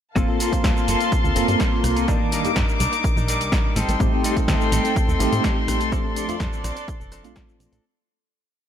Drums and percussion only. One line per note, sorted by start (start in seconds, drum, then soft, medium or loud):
0.16 kick loud
0.16 closed hi-hat medium
0.16 cabasa soft
0.40 open hi-hat loud
0.40 cabasa medium
0.53 kick medium
0.53 closed hi-hat medium
0.53 cabasa soft
0.64 kick loud
0.64 snare loud
0.64 closed hi-hat medium
0.64 cabasa soft
0.77 cabasa soft
0.88 open hi-hat loud
0.88 cabasa medium
1.00 closed hi-hat medium
1.00 cabasa soft
1.12 kick loud
1.12 closed hi-hat medium
1.12 cabasa soft
1.25 cabasa soft
1.36 open hi-hat loud
1.36 cabasa medium
1.48 closed hi-hat medium
1.48 cabasa soft
1.60 kick loud
1.60 snare loud
1.60 closed hi-hat medium
1.60 cabasa soft
1.84 cross-stick medium
1.84 open hi-hat loud
1.84 cabasa medium
1.97 closed hi-hat medium
1.97 cabasa soft
2.08 kick loud
2.08 closed hi-hat medium
2.08 cabasa soft
2.32 open hi-hat loud
2.32 cabasa medium
2.45 closed hi-hat medium
2.45 cabasa soft
2.56 kick loud
2.56 snare loud
2.56 closed hi-hat medium
2.56 cabasa soft
2.69 cabasa soft
2.80 open hi-hat loud
2.80 cabasa medium
2.93 closed hi-hat medium
2.93 cabasa soft
3.04 kick loud
3.04 closed hi-hat medium
3.04 cabasa soft
3.17 cabasa soft
3.28 open hi-hat loud
3.28 cabasa medium
3.41 closed hi-hat medium
3.41 cabasa soft
3.52 kick loud
3.52 snare loud
3.52 closed hi-hat medium
3.52 cabasa soft
3.76 open hi-hat loud
3.76 cabasa medium
3.89 closed hi-hat medium
3.89 cabasa soft
4.00 kick loud
4.00 closed hi-hat medium
4.00 cabasa soft
4.24 open hi-hat loud
4.24 cabasa medium
4.37 kick medium
4.37 closed hi-hat medium
4.37 cabasa soft
4.48 kick loud
4.48 snare loud
4.48 closed hi-hat medium
4.48 cabasa soft
4.61 cabasa soft
4.72 open hi-hat loud
4.72 cabasa medium
4.85 closed hi-hat medium
4.85 cabasa soft
4.96 kick loud
4.96 closed hi-hat medium
4.96 cabasa soft
5.09 cabasa soft
5.20 open hi-hat loud
5.20 cabasa medium
5.33 closed hi-hat medium
5.33 cabasa soft
5.44 kick loud
5.44 snare loud
5.44 closed hi-hat medium
5.44 cabasa soft
5.68 cross-stick medium
5.68 open hi-hat loud
5.68 cabasa medium
5.81 closed hi-hat medium
5.81 cabasa soft
5.92 kick loud
5.92 closed hi-hat medium
5.92 cabasa soft
6.16 open hi-hat loud
6.16 cabasa medium
6.29 closed hi-hat medium
6.29 cabasa soft
6.40 kick loud
6.40 snare loud
6.40 closed hi-hat medium
6.40 cabasa soft
6.53 cabasa soft
6.64 cross-stick medium
6.64 open hi-hat loud
6.64 cabasa medium
6.77 closed hi-hat medium
6.77 cabasa soft
6.88 kick loud
6.88 closed hi-hat medium
6.88 cabasa soft
7.01 cabasa soft
7.12 cross-stick medium
7.12 open hi-hat loud
7.12 cabasa medium
7.24 closed hi-hat medium
7.24 cabasa soft
7.36 kick loud
7.36 snare loud
7.36 closed hi-hat medium
7.36 cabasa soft
7.49 cabasa soft
7.60 open hi-hat loud
7.60 cabasa medium
7.73 closed hi-hat medium
7.73 cabasa soft